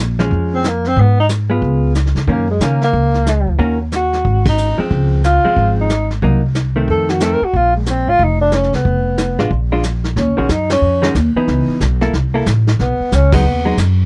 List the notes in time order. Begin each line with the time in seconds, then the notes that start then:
Already playing: A#1
0.19 F3 G#3 C#4, snare
0.31 F2, brush sweep, kick
0.54 C4
0.64 snare, hi-hat pedal
0.68 A#3
0.84 C4, snare
0.97 G#2 B3, brush sweep, kick
1.20 D#4
1.29 snare, hi-hat pedal
1.50 G#3 B3 F4
1.62 C#2, brush sweep, kick
1.95 snare, hi-hat pedal
2.06 snare
2.15 C#3, snare
2.27 F#2 D#3 A#3 C#4, brush sweep, kick
2.31 A#3
2.51 G#3
2.60 C#3 D#3 A#3 C#4, snare, hi-hat pedal
2.64 A#3
2.81 A#3, snare
2.93 C#2, brush sweep, kick
3.14 snare
3.26 snare, hi-hat pedal
3.47 D2
3.59 D#2 D#3 A#3 C#4 F#4, brush sweep, kick
3.92 snare, hi-hat pedal
3.96 F#4
4.13 snare
4.25 G#1, brush sweep, kick
4.45 D#4, kick, ride
4.58 hi-hat pedal
4.78 F3 G#3 C4, muted upright bass stroke
4.91 C#2, brush sweep, kick
5.24 F4, snare, hi-hat pedal
5.44 F3 G#3 C4, muted upright bass stroke
5.56 G#1, brush sweep, kick
5.81 D#4
5.89 snare, hi-hat pedal
6.10 snare
6.22 C2 F#3 A#3 D#4, brush sweep, kick
6.54 snare, hi-hat pedal
6.76 D#3 A3 C4
6.88 F2 A4, brush sweep, kick
7.09 F#4, snare
7.20 D#3 A3 C4 A4, snare, hi-hat pedal
7.33 A#4
7.41 F#4, muted upright bass stroke
7.53 A#1 F4, brush sweep, kick
7.76 G#3
7.86 C4, snare, hi-hat pedal
8.07 G#1 F4
8.19 F1, brush sweep, kick
8.24 D#4
8.41 D4
8.51 C#4, snare, hi-hat pedal
8.63 snare
8.72 C2 B3, snare
8.85 F1, brush sweep, kick
9.17 snare, hi-hat pedal
9.38 A1 G#3 D4 F4, snare
9.51 A#1, brush sweep, kick
9.72 G#3 D4 F4
9.83 snare, hi-hat pedal
10.04 snare
10.16 D#2 C#4, brush sweep, kick, snare
10.27 C#2
10.37 A#1 D#3 G#3 C#4 F#4
10.49 F#2 D#4, kick, snare, hi-hat pedal
10.69 C#4, snare, ride
10.81 F2, brush sweep
11.02 D#3 G#3 C#4 F#4, snare
11.15 D#2, kick, snare, hi-hat pedal
11.35 E3 B3 D#4, muted upright bass stroke
11.48 C#2, brush sweep, kick, snare
11.68 muted upright bass stroke
11.80 B1, kick, snare, hi-hat pedal
12.01 A#3 E4 A4, snare
12.13 C2, brush sweep, kick, snare
12.34 A#3 E4 A4
12.46 A1, kick, snare, hi-hat pedal
12.67 snare
12.79 B1 B3, brush sweep, kick, snare
13.00 muted upright bass stroke
13.12 C#2 C#4, kick, snare, hi-hat pedal
13.32 F#3 G#3 B3 D#4, kick, ride
13.44 D#2, brush sweep
13.65 F#3 G#3 D#4
13.77 F#2, kick, snare, hi-hat pedal